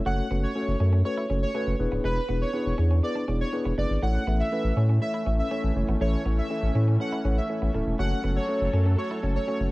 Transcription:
0.06 sub bass F#1, tine electric piano A3 C#4 F#4 A4 C#5, clean electric guitar F#4, supersaw synth F#5
0.18 muted clean electric guitar stroke
0.31 sub bass F#1, tine electric piano A3 C#4 F#4 A4 C#5, clean electric guitar B3
0.43 supersaw synth C#5
0.55 tine electric piano A3 C#4 F#4 A4 C#5, muted clean electric guitar stroke
0.68 sub bass F#1
0.80 sub bass F#2, tine electric piano A3 C#4 F#4 A4 C#5, clean electric guitar C#4
0.93 clean electric guitar C#4
1.05 tine electric piano A3 C#4 F#4 A4 B4, supersaw synth C#5, muted clean electric guitar stroke
1.17 clean electric guitar E4
1.30 sub bass F#1, tine electric piano A3 C#4 F#4 A4 C#5, clean electric guitar C#4
1.43 supersaw synth C#5
1.54 tine electric piano A3 C#4 F#4 A4 B4, clean electric guitar C#4
1.67 sub bass F#1, muted clean electric guitar stroke
1.79 sub bass E1, tine electric piano B3 D4 E4 G#4 B4
1.92 sub bass D1, clean electric guitar B3
2.04 sub bass E1, clean electric guitar G#3, supersaw synth B4
2.17 muted clean electric guitar stroke
2.29 sub bass E1, clean electric guitar B3, tine electric piano B3 D4 E4 G#4 B4
2.42 supersaw synth C#5
2.53 tine electric piano B3 D4 E4 G#4 B4, muted clean electric guitar stroke
2.66 sub bass E1
2.78 sub bass E2, tine electric piano B3 D4 E4 G#4 C#5, clean electric guitar C#4
2.91 clean electric guitar C#4
3.03 tine electric piano B3 D4 E4 G#4 B4, supersaw synth D5, muted clean electric guitar stroke
3.15 clean electric guitar D4
3.28 sub bass E1, tine electric piano B3 D4 E4 G#4 D5, clean electric guitar C#4
3.41 supersaw synth C#5
3.53 tine electric piano B3 D4 E4 G#4 B4, muted clean electric guitar stroke
3.65 sub bass E1, clean electric guitar B3
3.78 sub bass F#1, clean electric guitar G#3, tine electric piano B3 D4 E4 G#4 B4, supersaw synth D5
3.90 sub bass G#1
4.02 sub bass A1, analog synth pad E3 A3 C#4, tine electric piano A3 C#4 E4 A4 C#5, clean electric guitar A3, supersaw synth F#5
4.15 muted clean electric guitar stroke
4.27 sub bass A1, tine electric piano A3 C#4 E4 A4 E5, clean electric guitar B3
4.40 supersaw synth E5
4.52 tine electric piano A3 C#4 E4 A4 B4, muted clean electric guitar stroke
4.64 sub bass A1
4.77 sub bass A2, tine electric piano A3 C#4 E4 A4 C#5, clean electric guitar C#4
4.89 clean electric guitar C#4
5.01 tine electric piano A3 C#4 E4 A4 C#5, supersaw synth E5, muted clean electric guitar stroke
5.14 clean electric guitar E4
5.26 sub bass A1, tine electric piano A3 C#4 E4 A4 E5, clean electric guitar C#4
5.39 supersaw synth E5
5.51 tine electric piano A3 C#4 E4 A4 C#5, clean electric guitar C#4
5.64 sub bass A1, muted clean electric guitar stroke
5.76 sub bass F#1, tine electric piano A3 C#4 E4 A4 C#5
5.88 sub bass G#1, clean electric guitar B3
6.01 sub bass A1, tine electric piano A3 C#4 E4 A4 E5, clean electric guitar A3, supersaw synth C#5
6.13 muted clean electric guitar stroke
6.26 sub bass A1, tine electric piano A3 C#4 E4 A4 C#5, clean electric guitar B3
6.38 supersaw synth E5
6.50 tine electric piano A3 C#4 E4 A4 E5, muted clean electric guitar stroke
6.63 sub bass A1
6.75 sub bass A2, tine electric piano A3 C#4 E4 A4 C#5, clean electric guitar C#4
6.88 clean electric guitar C#4
7.00 tine electric piano A3 C#4 E4 A4 C#5, supersaw synth F#5, muted clean electric guitar stroke
7.12 clean electric guitar E4
7.24 sub bass A1, tine electric piano A3 C#4 E4 A4 C#5, clean electric guitar C#4
7.38 supersaw synth E5
7.49 tine electric piano A3 C#4 E4 A4 C#5, muted clean electric guitar stroke
7.62 sub bass A1, clean electric guitar B3
7.74 sub bass D1, clean electric guitar A3, tine electric piano A3 C#4 E4 A4 E5
7.87 sub bass E1
7.99 sub bass F#1, analog synth pad F#3 A4, tine electric piano A3 C#4 F#4 A4 C#5, clean electric guitar F#4, supersaw synth F#5
8.11 muted clean electric guitar stroke
8.24 sub bass F#1, tine electric piano A3 C#4 F#4 A4 C#5, clean electric guitar B3
8.36 supersaw synth C#5
8.49 tine electric piano A3 C#4 F#4 A4 C#5, muted clean electric guitar stroke
8.61 sub bass F#1
8.73 sub bass F#2, tine electric piano A3 C#4 F#4 A4 C#5, clean electric guitar C#4
8.86 clean electric guitar C#4
8.98 tine electric piano A3 C#4 F#4 A4 C#5, supersaw synth C#5, muted clean electric guitar stroke
9.11 clean electric guitar E4
9.23 sub bass F#1, tine electric piano A3 C#4 F#4 A4 C#5, clean electric guitar C#4
9.36 supersaw synth C#5
9.47 tine electric piano A3 C#4 F#4 A4 C#5, clean electric guitar C#4
9.60 sub bass F#1, muted clean electric guitar stroke

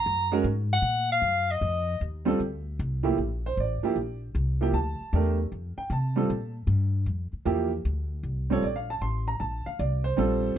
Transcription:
Already playing: soprano saxophone A#5
0.06 upright bass F#2
0.32 grand piano G#3 C#4 F#4 A#4
0.44 upright bass G#2
0.73 soprano saxophone F#5
0.82 upright bass A#2
1.12 soprano saxophone F5
1.22 upright bass F#2
1.51 soprano saxophone D#5
1.61 upright bass F2
2.01 upright bass D#2
2.25 grand piano G3 C4 F4 A4
2.40 upright bass D2
2.79 upright bass C2
3.03 grand piano A2 F3 A#3 E4 G4
3.18 upright bass A#1
3.46 grand piano C5
3.57 upright bass A1, grand piano D5
3.83 grand piano F3 A#3 E4 G4, muted upright bass stroke
3.96 upright bass A#1
4.35 upright bass C2
4.61 grand piano F3 A#3 E4 G4 G5
4.73 upright bass D2, grand piano A5
5.01 muted upright bass stroke
5.13 upright bass E2, grand piano A3 D4 G4 A#4
5.52 upright bass F2
5.78 grand piano G5, muted upright bass stroke
5.90 upright bass C3, grand piano A5
6.16 grand piano G3 C4 F4 A4
6.30 upright bass A#2
6.67 upright bass G2
7.06 upright bass F2
7.33 muted upright bass stroke
7.45 upright bass E2, grand piano F3 A#3 E4 G4
7.85 upright bass D2
8.23 upright bass C2
8.50 grand piano G3 C4 F4 A4 C#5
8.62 upright bass A#1, grand piano D5
8.76 grand piano F5
8.90 grand piano A5
9.01 upright bass A1, grand piano C6
9.28 grand piano A#5
9.40 upright bass A#1, grand piano A5
9.66 grand piano F5, muted upright bass stroke
9.79 upright bass C2, grand piano D5
10.04 grand piano C5
10.17 upright bass A#1, grand piano G3 C4 F4 A4

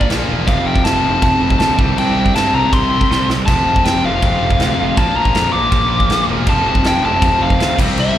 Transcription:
Already playing: distorted electric guitar A#2 F3 A#3
0.01 kick
0.09 picked electric bass A#1, overdriven electric guitar A#2 F3 A#3 D4 F4, snare, crash
0.27 picked electric bass E1, distorted electric guitar A#2 F3 A#3
0.46 picked electric bass F1, overdriven electric guitar F2 C3 F3 A3 C4 F4, lead electric guitar F5, kick, crash
0.66 picked electric bass F1, lead electric guitar G5
0.76 kick
0.84 picked electric bass F1, lead electric guitar A5, snare, crash
1.02 picked electric bass F1, overdriven electric guitar F2 C3 F3 A3 C4 F4
1.22 picked electric bass F1, lead electric guitar A5, kick, crash
1.41 picked electric bass F1
1.50 kick
1.58 picked electric bass D2, overdriven electric guitar F2 C3 F3 A3 C4 F4, lead electric guitar A5, snare, crash
1.77 picked electric bass C2, overdriven electric guitar C3 G3 C4 E4, kick
1.96 picked electric bass C2, lead electric guitar G5, crash
2.16 picked electric bass C2
2.26 kick
2.34 picked electric bass G2, overdriven electric guitar C3 G3 C4 E4, lead electric guitar A5, snare, crash
2.53 picked electric bass C2, lead electric guitar A#5
2.72 picked electric bass C2, lead electric guitar C6, kick, crash
2.90 overdriven electric guitar C3 G3 C4 E4
3.01 kick
3.10 picked electric bass C2, distorted electric guitar C3 G3 C4, snare
3.29 picked electric bass C2, snare
3.46 picked electric bass F1, overdriven electric guitar F2 C3 F3 A3, lead electric guitar A5, kick, splash, crash
3.50 overdriven electric guitar C4 F4
3.67 picked electric bass F1
3.76 kick
3.84 picked electric bass F1, lead electric guitar G5, snare, crash
4.03 picked electric bass F1, overdriven electric guitar F2 C3 F3 A3 C4 F4, lead electric guitar F5
4.22 picked electric bass F1, kick, crash
4.41 picked electric bass F1
4.50 kick
4.58 picked electric bass D2, overdriven electric guitar F2 C3 F3 A3 C4 F4, snare, crash
4.78 picked electric bass F1, distorted electric guitar F2 C3 F3
4.96 picked electric bass A#1, overdriven electric guitar A#2 F3 A#3 D4 F4, lead electric guitar A5, kick, crash
5.16 picked electric bass A#1, lead electric guitar A#5
5.25 kick
5.35 picked electric bass F2, snare, crash
5.52 picked electric bass A#1, overdriven electric guitar A#2 F3 A#3 D4 F4, lead electric guitar D6
5.72 picked electric bass A#1, kick, crash
6.00 kick
6.08 picked electric bass A#1, overdriven electric guitar A#2 F3 A#3 D4 F4, snare, crash
6.28 picked electric bass E1, distorted electric guitar A#2 F3 A#3
6.46 picked electric bass F1, overdriven electric guitar F2 C3 F3 A3 C4 F4, lead electric guitar A5, kick, crash
6.65 picked electric bass F1
6.75 kick
6.83 picked electric bass F1, lead electric guitar G5, snare, crash
7.02 picked electric bass F1, overdriven electric guitar F2 C3 F3 A3 C4 F4
7.06 lead electric guitar A5
7.22 picked electric bass F1, kick, crash
7.40 picked electric bass F1, lead electric guitar F5
7.50 kick
7.59 picked electric bass D2, overdriven electric guitar F2 C3 F3 A3 C4 F4, snare, crash
7.77 picked electric bass C2, overdriven electric guitar C3 G3 C4 E4, kick, crash
7.96 picked electric bass C2, crash
8.00 lead electric guitar E5
8.15 picked electric bass C2

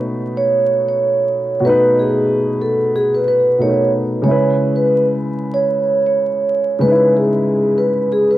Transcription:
Already playing: grand piano B2 A3 D#4 B4
0.37 vibraphone C#5
0.88 vibraphone C#5
1.60 grand piano B2 A3
1.65 grand piano D#4, vibraphone B4
1.69 grand piano B4
1.99 vibraphone G#4
2.61 vibraphone A4
2.95 vibraphone G#4
3.14 vibraphone B4
3.28 vibraphone B4
3.58 grand piano B2 A3 D#4, vibraphone C#5
3.63 grand piano A#4
3.69 grand piano B4
4.22 grand piano C#3 G#3, vibraphone C#5
4.28 grand piano E4 B4
4.76 vibraphone B4
5.54 vibraphone C#5
6.07 vibraphone C#5
6.79 grand piano C#3 G#3, vibraphone B4
6.85 grand piano D#4 B4
6.92 grand piano E4
7.17 vibraphone G#4
7.78 vibraphone B4
8.12 vibraphone G#4
8.31 vibraphone B4

